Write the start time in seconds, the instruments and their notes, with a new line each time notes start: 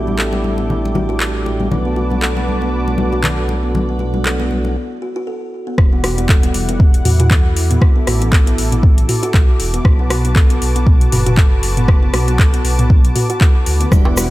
Already playing: detuned saw bass A1, tonewheel organ G3 A3 D4 E4 G4, analog synth pad E4 A4 D6
0.07 kalimba B3, high conga
0.18 kalimba A4, clap
0.33 kalimba B3, muted conga
0.44 high conga
0.58 kalimba B3, muted conga
0.70 low conga
0.85 muted conga
0.95 kalimba F#4, high conga, low conga
1.09 kalimba F#4, muted conga
1.20 kalimba A4, clap
1.46 muted conga
1.60 kalimba B3, high conga
1.71 detuned saw bass B1, tonewheel organ F#3 A3 B3 D4 F#4, analog synth pad F#4 B4 A5 D6, muted conga, high conga, low conga
1.85 kalimba B3
1.96 kalimba F#4, muted conga
2.11 kalimba B3, high conga
2.22 kalimba A4, clap
2.36 kalimba B3, muted conga
2.49 high conga
2.61 kalimba B3, muted conga
2.88 muted conga
2.98 kalimba F#4, high conga
3.12 kalimba F#4, muted conga, high conga
3.24 clap, low conga
3.49 muted conga
3.63 kalimba B3
3.75 muted conga, high conga, low conga
3.89 kalimba B3
3.99 kalimba F#4, muted conga
4.14 kalimba B3, high conga
4.25 kalimba A4, clap
4.40 kalimba B3, muted conga
4.51 high conga
4.65 kalimba B3, muted conga
5.02 kalimba F#4
5.16 kalimba F#4
5.27 kalimba A4
5.67 kalimba B3
5.78 detuned saw bass E1, analog synth pad G3 E4 F#5 D6, kick, cross-stick
5.93 kalimba B3
6.04 kalimba F#4, cross-stick, open hi-hat
6.18 kalimba B3, closed hi-hat
6.29 kalimba A4, kick, clap
6.43 kalimba B3, closed hi-hat
6.54 detuned saw bass E1, open hi-hat
6.69 kalimba B3, closed hi-hat
6.80 kick
6.94 closed hi-hat
7.05 detuned saw bass E2, kalimba F#4, mid tom, open hi-hat
7.20 kalimba F#4, closed hi-hat, mid tom
7.31 kick, clap
7.57 open hi-hat
7.70 kalimba B3, closed hi-hat, mid tom
7.82 analog synth pad A4, kick, cross-stick
7.96 kalimba B3
8.07 detuned saw bass A1, kalimba F#4, cross-stick, open hi-hat
8.21 kalimba B3, closed hi-hat
8.32 kalimba A4, kick, clap
8.47 kalimba B3, closed hi-hat
8.58 detuned saw bass A1, open hi-hat
8.72 kalimba B3, closed hi-hat, mid tom
8.83 kick
8.98 closed hi-hat
9.09 kalimba F#4, mid tom, open hi-hat
9.23 kalimba F#4, closed hi-hat
9.34 detuned saw bass B1, kick, clap
9.60 detuned saw bass E1, open hi-hat
9.74 kalimba B3, closed hi-hat
9.85 detuned saw bass B1, analog synth pad F#4 B4 A5, kick, cross-stick
9.99 kalimba B3
10.10 kalimba F#4, cross-stick, open hi-hat
10.25 kalimba B3, closed hi-hat
10.36 kalimba A4, kick, clap
10.50 kalimba B3, closed hi-hat
10.61 detuned saw bass B1, open hi-hat
10.75 kalimba B3, closed hi-hat
10.87 kick
11.01 closed hi-hat
11.12 detuned saw bass F#1, kalimba F#4, mid tom, open hi-hat
11.26 kalimba F#4, closed hi-hat, mid tom
11.37 kalimba A4, kick, clap
11.63 open hi-hat
11.77 kalimba B3, closed hi-hat, mid tom
11.88 kick, cross-stick
12.03 kalimba B3
12.14 detuned saw bass B1, kalimba F#4, cross-stick, open hi-hat
12.28 kalimba B3, closed hi-hat
12.39 kick, clap
12.53 kalimba B3, closed hi-hat
12.65 detuned saw bass B1, open hi-hat
12.79 kalimba B3, closed hi-hat, mid tom
12.90 kick
13.05 closed hi-hat
13.16 kalimba F#4, mid tom, open hi-hat
13.30 kalimba F#4, closed hi-hat
13.41 kalimba A4, kick, clap
13.66 detuned saw bass D2, open hi-hat
13.81 kalimba B3, closed hi-hat
13.92 detuned saw bass E1, tonewheel organ G3 B3 D4 E4 F#4, analog synth pad G3 E4 F#5, kick, cross-stick, muted conga, high conga, low conga, shaker
14.05 kalimba B3, darbuka tek
14.17 kalimba F#4, cross-stick, open hi-hat, muted conga, shaker